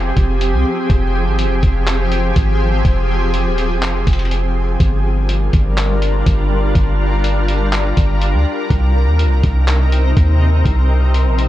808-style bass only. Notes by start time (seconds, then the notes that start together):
Already playing: F1
0.17 F1
0.53 C2
0.90 F1
1.26 G#1
1.45 F1
1.63 F1
2.36 G#1
2.85 F1
3.46 D#1
3.76 F1
4.07 F1
4.80 G1
5.53 G1
6.26 G1
6.75 G1
7.97 G1
8.34 D2
8.70 C2
9.07 D#2
9.25 C2
9.44 C2
10.17 D#2
10.65 C2
11.26 A#1